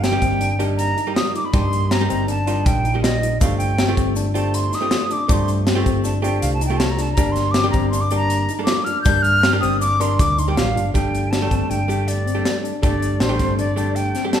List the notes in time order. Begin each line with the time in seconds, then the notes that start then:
Already playing: G1
0.03 C4 G5, snare, closed hi-hat
0.12 G3 A#3 D#4 G4
0.22 G1 C4, kick, closed hi-hat
0.41 D4, closed hi-hat
0.59 G3 A#3 D4 D#4 G4, closed hi-hat
0.77 A#5, closed hi-hat
0.97 D#4, closed hi-hat
1.07 G3 A#3 D#4 G4
1.16 F4 D#6, snare, closed hi-hat
1.35 D#4 D6, closed hi-hat
1.45 B5
1.53 G2 G3 A#3 D4 D#4 G4 C6, kick, closed hi-hat
1.73 closed hi-hat
1.91 C4 A#5, snare, closed hi-hat
2.01 G3 A#3 D#4 G4
2.10 G1 C4, closed hi-hat
2.28 D4 A5, closed hi-hat
2.47 G3 A#3 D4 D#4 F4, closed hi-hat
2.66 A#1 G5, kick, closed hi-hat
2.84 D#4, closed hi-hat
2.94 G3 A#3 D#4 G4
3.03 F4 D#5, snare, closed hi-hat
3.22 D#4, closed hi-hat
3.41 G1 A3 C4 D4 F4 G4 F5, kick, closed hi-hat, shaker
3.58 G5, closed hi-hat, shaker
3.78 C4, snare, closed hi-hat
3.88 A3 C4 F4 G4
3.97 G1 C4, kick, closed hi-hat
4.16 D4, closed hi-hat, shaker
4.34 A3 C4 D4 F4 G4 A5, closed hi-hat
4.54 C6, closed hi-hat
4.72 D#4 D#6, snare, closed hi-hat, shaker
4.81 A3 C4 F4 G4
4.91 F4, snare, closed hi-hat
5.11 D4 D6, closed hi-hat
5.28 G2 A3 C4 D4 F4 G4, kick, closed hi-hat, shaker
5.32 C6
5.48 closed hi-hat, shaker
5.67 C4, snare, closed hi-hat
5.75 A3 C4 F4 G4
5.86 G1 C4, kick, closed hi-hat
6.04 D4 A5, closed hi-hat, shaker
6.22 A3 C4 D4 F4 G4 G5, closed hi-hat
6.42 C2 F5, closed hi-hat
6.54 A5
6.61 D#4, closed hi-hat, shaker
6.66 A3 G5
6.70 C4 F4 G4
6.78 F4 A5, snare, closed hi-hat
6.90 A#5
6.99 D4 A5, snare, closed hi-hat
7.13 G3 A#5, closed hi-hat
7.18 G1 A#3 D4 G4, kick, shaker
7.32 C6, snare, closed hi-hat
7.37 shaker
7.51 D6, snare, closed hi-hat
7.55 C4
7.64 G3 A#3 D4 G4
7.71 G1 C4 A#5, kick, closed hi-hat
7.90 D4 C6, closed hi-hat
7.94 shaker
8.01 D6
8.11 G3 A#3 D4 G4, closed hi-hat
8.16 A#5
8.30 closed hi-hat
8.49 D#4, closed hi-hat, shaker
8.59 G3 A#3 D4 A4
8.64 D6, snare, closed hi-hat
8.69 F4
8.84 D4 F6, closed hi-hat
9.02 G3 G6, closed hi-hat, shaker
9.06 G2 A#3 D4 G4, kick
9.22 F6, closed hi-hat
9.43 C4, snare, closed hi-hat
9.53 G3 A#3 D4 G4
9.61 G1 C4 D#6, closed hi-hat
9.81 D4 D6, closed hi-hat, shaker
10.00 G3 A#3 D4 A#4 C6, closed hi-hat
10.19 D2 D6, kick, closed hi-hat
10.38 D#4 C6, closed hi-hat, shaker
10.48 G3 A#3 D4 G4 G5
10.57 A1 F4 F5, snare, closed hi-hat
10.76 G1 D4, closed hi-hat
10.94 G1 G3 A3 D4 G4 G5, kick, closed hi-hat
11.15 closed hi-hat
11.31 D4 A5, snare, closed hi-hat
11.41 G3 A3 D4 G4
11.51 G1 C4, kick, closed hi-hat
11.70 G1 D4 G5, closed hi-hat
11.88 G3 A3 D4 G4, closed hi-hat
12.08 D5, closed hi-hat
12.27 C4, closed hi-hat
12.35 G3 A3 D4 G4
12.45 D4, snare, closed hi-hat
12.64 D4, closed hi-hat
12.82 G1 G3 A3 D4 G4 D5, kick, closed hi-hat
13.02 closed hi-hat
13.20 A1 D4 C5, snare, closed hi-hat
13.29 G3 A3 D4 G4
13.39 G1 C4, kick, snare, closed hi-hat
13.59 D4 D5, closed hi-hat
13.76 G3 A3 D4 G4, closed hi-hat
13.96 G5, closed hi-hat
14.15 C4, snare, closed hi-hat
14.24 G3 A3 D4 G4
14.33 D4 A5, snare, closed hi-hat